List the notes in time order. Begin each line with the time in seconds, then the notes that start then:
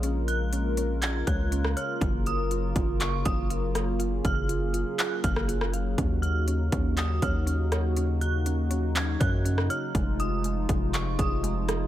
Already playing: A#1 C#3 G#3 A#3 F4 C#5
0.03 C#4 A#4, closed hi-hat
0.28 F#6, closed hi-hat
0.53 C#4, closed hi-hat
0.77 C#4, closed hi-hat
1.02 C#4 G#6, clap, closed hi-hat
1.27 C#2 C#5 F#6, kick, closed hi-hat
1.52 C#4, closed hi-hat
1.65 cross-stick
1.77 C#5 F6, closed hi-hat
2.01 F#1 F#3 F4 A#4, kick, closed hi-hat
2.26 D#6, closed hi-hat
2.51 F4, closed hi-hat
2.76 F#1 F4, kick, closed hi-hat
3.00 F4 C#6, clap, closed hi-hat
3.25 F#1 F5 D#6, kick, closed hi-hat
3.50 F4, closed hi-hat
3.75 F5, cross-stick, closed hi-hat
3.99 F4 G#4, closed hi-hat
4.25 F#1 F6, kick, closed hi-hat
4.49 F4, closed hi-hat
4.74 F4, closed hi-hat
4.99 F4 F#6, clap, closed hi-hat
5.24 F#1 F5 F6, kick, closed hi-hat
5.36 cross-stick
5.48 F4, closed hi-hat
5.61 cross-stick
5.74 F5, closed hi-hat
5.98 D#2 C#4 D#4 F#4, kick, closed hi-hat
6.22 F6, closed hi-hat
6.48 C#4, closed hi-hat
6.72 D#2 C#4, kick, closed hi-hat
6.97 C#4 D#6, clap, closed hi-hat
7.22 D#2 C#5 F6, kick, closed hi-hat
7.47 C#4, closed hi-hat
7.72 C#5, cross-stick, closed hi-hat
7.97 C#4, closed hi-hat
8.21 F#6, closed hi-hat
8.46 C#4, closed hi-hat
8.70 C#4, closed hi-hat
8.95 C#4 G#6, clap, closed hi-hat
9.20 F#2 C#5 F#6, kick, closed hi-hat
9.45 C#4, closed hi-hat
9.58 cross-stick
9.70 C#5 F6, closed hi-hat
9.95 F1 C3 F3 G#3 F4, kick, closed hi-hat
10.20 D#6, closed hi-hat
10.44 G#3, closed hi-hat
10.69 F1 G#3, kick, closed hi-hat
10.94 G#3 C#6, clap, closed hi-hat
11.19 F1 G#4 D#6, kick, closed hi-hat
11.43 G#3, closed hi-hat
11.68 G#4, cross-stick, closed hi-hat